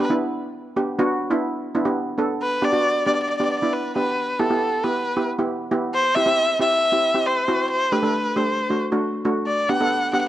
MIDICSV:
0, 0, Header, 1, 3, 480
1, 0, Start_track
1, 0, Key_signature, 1, "major"
1, 0, Tempo, 440852
1, 709, Time_signature, 4, 2, 24, 8
1, 11196, End_track
2, 0, Start_track
2, 0, Title_t, "Erhu"
2, 0, Program_c, 0, 110
2, 8, Note_on_c, 0, 71, 56
2, 88, Note_off_c, 0, 71, 0
2, 2635, Note_on_c, 0, 71, 80
2, 2879, Note_on_c, 0, 74, 87
2, 2895, Note_off_c, 0, 71, 0
2, 3335, Note_off_c, 0, 74, 0
2, 3342, Note_on_c, 0, 74, 86
2, 3420, Note_off_c, 0, 74, 0
2, 3428, Note_on_c, 0, 74, 61
2, 3500, Note_off_c, 0, 74, 0
2, 3507, Note_on_c, 0, 74, 79
2, 3580, Note_off_c, 0, 74, 0
2, 3587, Note_on_c, 0, 74, 59
2, 3665, Note_off_c, 0, 74, 0
2, 3671, Note_on_c, 0, 74, 75
2, 3748, Note_off_c, 0, 74, 0
2, 3755, Note_on_c, 0, 74, 62
2, 3820, Note_off_c, 0, 74, 0
2, 3827, Note_on_c, 0, 74, 68
2, 3907, Note_off_c, 0, 74, 0
2, 3912, Note_on_c, 0, 74, 62
2, 4068, Note_on_c, 0, 71, 67
2, 4084, Note_off_c, 0, 74, 0
2, 4295, Note_off_c, 0, 71, 0
2, 4302, Note_on_c, 0, 71, 78
2, 4782, Note_on_c, 0, 69, 77
2, 4798, Note_off_c, 0, 71, 0
2, 5263, Note_on_c, 0, 71, 73
2, 5279, Note_off_c, 0, 69, 0
2, 5744, Note_off_c, 0, 71, 0
2, 6472, Note_on_c, 0, 72, 94
2, 6699, Note_on_c, 0, 76, 102
2, 6716, Note_off_c, 0, 72, 0
2, 7183, Note_off_c, 0, 76, 0
2, 7198, Note_on_c, 0, 76, 97
2, 7909, Note_on_c, 0, 72, 80
2, 7926, Note_off_c, 0, 76, 0
2, 8385, Note_off_c, 0, 72, 0
2, 8391, Note_on_c, 0, 72, 86
2, 8622, Note_on_c, 0, 71, 75
2, 8639, Note_off_c, 0, 72, 0
2, 9107, Note_on_c, 0, 72, 68
2, 9123, Note_off_c, 0, 71, 0
2, 9588, Note_off_c, 0, 72, 0
2, 10308, Note_on_c, 0, 74, 81
2, 10550, Note_on_c, 0, 78, 85
2, 10566, Note_off_c, 0, 74, 0
2, 11025, Note_off_c, 0, 78, 0
2, 11032, Note_on_c, 0, 78, 84
2, 11107, Note_off_c, 0, 78, 0
2, 11113, Note_on_c, 0, 78, 61
2, 11184, Note_off_c, 0, 78, 0
2, 11196, End_track
3, 0, Start_track
3, 0, Title_t, "Steel pan"
3, 0, Program_c, 1, 114
3, 105, Note_on_c, 1, 59, 68
3, 109, Note_on_c, 1, 62, 60
3, 112, Note_on_c, 1, 64, 74
3, 611, Note_off_c, 1, 59, 0
3, 613, Note_off_c, 1, 62, 0
3, 614, Note_off_c, 1, 64, 0
3, 832, Note_on_c, 1, 59, 65
3, 833, Note_on_c, 1, 62, 58
3, 836, Note_on_c, 1, 67, 86
3, 974, Note_off_c, 1, 59, 0
3, 974, Note_off_c, 1, 62, 0
3, 975, Note_off_c, 1, 67, 0
3, 1076, Note_on_c, 1, 59, 92
3, 1080, Note_on_c, 1, 66, 98
3, 1081, Note_on_c, 1, 62, 81
3, 1288, Note_off_c, 1, 59, 0
3, 1290, Note_off_c, 1, 62, 0
3, 1290, Note_off_c, 1, 66, 0
3, 1420, Note_on_c, 1, 62, 75
3, 1423, Note_on_c, 1, 59, 76
3, 1425, Note_on_c, 1, 64, 91
3, 1712, Note_off_c, 1, 62, 0
3, 1713, Note_off_c, 1, 59, 0
3, 1714, Note_off_c, 1, 64, 0
3, 1902, Note_on_c, 1, 59, 73
3, 1905, Note_on_c, 1, 62, 74
3, 1907, Note_on_c, 1, 64, 76
3, 1977, Note_off_c, 1, 59, 0
3, 1978, Note_off_c, 1, 62, 0
3, 1979, Note_off_c, 1, 64, 0
3, 2016, Note_on_c, 1, 62, 64
3, 2017, Note_on_c, 1, 59, 75
3, 2017, Note_on_c, 1, 67, 78
3, 2237, Note_off_c, 1, 62, 0
3, 2238, Note_off_c, 1, 59, 0
3, 2238, Note_off_c, 1, 67, 0
3, 2370, Note_on_c, 1, 59, 71
3, 2376, Note_on_c, 1, 62, 69
3, 2379, Note_on_c, 1, 69, 87
3, 2594, Note_off_c, 1, 59, 0
3, 2597, Note_off_c, 1, 62, 0
3, 2599, Note_off_c, 1, 69, 0
3, 2851, Note_on_c, 1, 59, 71
3, 2853, Note_on_c, 1, 62, 65
3, 2855, Note_on_c, 1, 67, 73
3, 2931, Note_off_c, 1, 59, 0
3, 2932, Note_off_c, 1, 62, 0
3, 2933, Note_off_c, 1, 67, 0
3, 2967, Note_on_c, 1, 62, 61
3, 2968, Note_on_c, 1, 59, 62
3, 2969, Note_on_c, 1, 66, 76
3, 3193, Note_off_c, 1, 59, 0
3, 3193, Note_off_c, 1, 62, 0
3, 3193, Note_off_c, 1, 66, 0
3, 3335, Note_on_c, 1, 59, 60
3, 3336, Note_on_c, 1, 67, 73
3, 3337, Note_on_c, 1, 62, 64
3, 3556, Note_off_c, 1, 59, 0
3, 3557, Note_off_c, 1, 67, 0
3, 3558, Note_off_c, 1, 62, 0
3, 3699, Note_on_c, 1, 59, 61
3, 3700, Note_on_c, 1, 62, 56
3, 3701, Note_on_c, 1, 67, 68
3, 3846, Note_off_c, 1, 59, 0
3, 3847, Note_off_c, 1, 62, 0
3, 3847, Note_off_c, 1, 67, 0
3, 3943, Note_on_c, 1, 59, 62
3, 3948, Note_on_c, 1, 62, 51
3, 3949, Note_on_c, 1, 64, 68
3, 4161, Note_off_c, 1, 59, 0
3, 4163, Note_off_c, 1, 62, 0
3, 4164, Note_off_c, 1, 64, 0
3, 4309, Note_on_c, 1, 59, 64
3, 4310, Note_on_c, 1, 62, 56
3, 4311, Note_on_c, 1, 67, 72
3, 4548, Note_off_c, 1, 59, 0
3, 4548, Note_off_c, 1, 62, 0
3, 4548, Note_off_c, 1, 67, 0
3, 4783, Note_on_c, 1, 59, 71
3, 4786, Note_on_c, 1, 67, 77
3, 4789, Note_on_c, 1, 64, 65
3, 4857, Note_off_c, 1, 59, 0
3, 4859, Note_off_c, 1, 67, 0
3, 4860, Note_off_c, 1, 64, 0
3, 4901, Note_on_c, 1, 59, 72
3, 4905, Note_on_c, 1, 67, 73
3, 4906, Note_on_c, 1, 64, 60
3, 5120, Note_off_c, 1, 59, 0
3, 5122, Note_off_c, 1, 64, 0
3, 5122, Note_off_c, 1, 67, 0
3, 5267, Note_on_c, 1, 64, 55
3, 5268, Note_on_c, 1, 67, 70
3, 5269, Note_on_c, 1, 59, 65
3, 5483, Note_off_c, 1, 64, 0
3, 5483, Note_off_c, 1, 67, 0
3, 5484, Note_off_c, 1, 59, 0
3, 5624, Note_on_c, 1, 59, 64
3, 5625, Note_on_c, 1, 64, 59
3, 5627, Note_on_c, 1, 67, 70
3, 5769, Note_off_c, 1, 59, 0
3, 5770, Note_off_c, 1, 64, 0
3, 5770, Note_off_c, 1, 67, 0
3, 5864, Note_on_c, 1, 59, 70
3, 5868, Note_on_c, 1, 64, 65
3, 5869, Note_on_c, 1, 67, 77
3, 6082, Note_off_c, 1, 59, 0
3, 6084, Note_off_c, 1, 64, 0
3, 6084, Note_off_c, 1, 67, 0
3, 6220, Note_on_c, 1, 64, 73
3, 6223, Note_on_c, 1, 59, 82
3, 6223, Note_on_c, 1, 67, 83
3, 6463, Note_off_c, 1, 64, 0
3, 6465, Note_off_c, 1, 59, 0
3, 6465, Note_off_c, 1, 67, 0
3, 6706, Note_on_c, 1, 60, 70
3, 6714, Note_on_c, 1, 64, 67
3, 6714, Note_on_c, 1, 67, 80
3, 6779, Note_off_c, 1, 60, 0
3, 6783, Note_off_c, 1, 64, 0
3, 6783, Note_off_c, 1, 67, 0
3, 6816, Note_on_c, 1, 60, 72
3, 6816, Note_on_c, 1, 64, 59
3, 6821, Note_on_c, 1, 67, 75
3, 7037, Note_off_c, 1, 60, 0
3, 7038, Note_off_c, 1, 64, 0
3, 7040, Note_off_c, 1, 67, 0
3, 7180, Note_on_c, 1, 60, 68
3, 7185, Note_on_c, 1, 64, 59
3, 7187, Note_on_c, 1, 67, 77
3, 7400, Note_off_c, 1, 60, 0
3, 7402, Note_off_c, 1, 64, 0
3, 7403, Note_off_c, 1, 67, 0
3, 7536, Note_on_c, 1, 60, 61
3, 7539, Note_on_c, 1, 64, 59
3, 7539, Note_on_c, 1, 67, 64
3, 7685, Note_off_c, 1, 60, 0
3, 7687, Note_off_c, 1, 64, 0
3, 7687, Note_off_c, 1, 67, 0
3, 7779, Note_on_c, 1, 60, 66
3, 7781, Note_on_c, 1, 64, 51
3, 7783, Note_on_c, 1, 67, 75
3, 7999, Note_off_c, 1, 60, 0
3, 8000, Note_off_c, 1, 64, 0
3, 8001, Note_off_c, 1, 67, 0
3, 8143, Note_on_c, 1, 64, 61
3, 8144, Note_on_c, 1, 60, 65
3, 8146, Note_on_c, 1, 66, 72
3, 8386, Note_off_c, 1, 60, 0
3, 8386, Note_off_c, 1, 64, 0
3, 8387, Note_off_c, 1, 66, 0
3, 8624, Note_on_c, 1, 57, 67
3, 8624, Note_on_c, 1, 62, 59
3, 8628, Note_on_c, 1, 67, 76
3, 8699, Note_off_c, 1, 57, 0
3, 8699, Note_off_c, 1, 62, 0
3, 8700, Note_off_c, 1, 67, 0
3, 8738, Note_on_c, 1, 57, 72
3, 8739, Note_on_c, 1, 69, 72
3, 8744, Note_on_c, 1, 62, 62
3, 8959, Note_off_c, 1, 57, 0
3, 8960, Note_off_c, 1, 69, 0
3, 8962, Note_off_c, 1, 62, 0
3, 9101, Note_on_c, 1, 57, 66
3, 9105, Note_on_c, 1, 67, 66
3, 9108, Note_on_c, 1, 62, 57
3, 9321, Note_off_c, 1, 57, 0
3, 9323, Note_off_c, 1, 67, 0
3, 9324, Note_off_c, 1, 62, 0
3, 9472, Note_on_c, 1, 62, 54
3, 9473, Note_on_c, 1, 57, 59
3, 9475, Note_on_c, 1, 66, 66
3, 9614, Note_off_c, 1, 57, 0
3, 9614, Note_off_c, 1, 62, 0
3, 9615, Note_off_c, 1, 66, 0
3, 9712, Note_on_c, 1, 66, 78
3, 9714, Note_on_c, 1, 57, 68
3, 9714, Note_on_c, 1, 62, 68
3, 9926, Note_off_c, 1, 66, 0
3, 9927, Note_off_c, 1, 57, 0
3, 9928, Note_off_c, 1, 62, 0
3, 10068, Note_on_c, 1, 57, 76
3, 10072, Note_on_c, 1, 62, 68
3, 10074, Note_on_c, 1, 66, 83
3, 10309, Note_off_c, 1, 57, 0
3, 10310, Note_off_c, 1, 62, 0
3, 10311, Note_off_c, 1, 66, 0
3, 10551, Note_on_c, 1, 62, 62
3, 10552, Note_on_c, 1, 59, 70
3, 10558, Note_on_c, 1, 67, 76
3, 10623, Note_off_c, 1, 59, 0
3, 10623, Note_off_c, 1, 62, 0
3, 10626, Note_off_c, 1, 67, 0
3, 10674, Note_on_c, 1, 59, 72
3, 10678, Note_on_c, 1, 69, 75
3, 10679, Note_on_c, 1, 62, 55
3, 10888, Note_off_c, 1, 59, 0
3, 10890, Note_off_c, 1, 69, 0
3, 10891, Note_off_c, 1, 62, 0
3, 11032, Note_on_c, 1, 59, 67
3, 11033, Note_on_c, 1, 67, 75
3, 11034, Note_on_c, 1, 62, 57
3, 11196, Note_off_c, 1, 59, 0
3, 11196, Note_off_c, 1, 62, 0
3, 11196, Note_off_c, 1, 67, 0
3, 11196, End_track
0, 0, End_of_file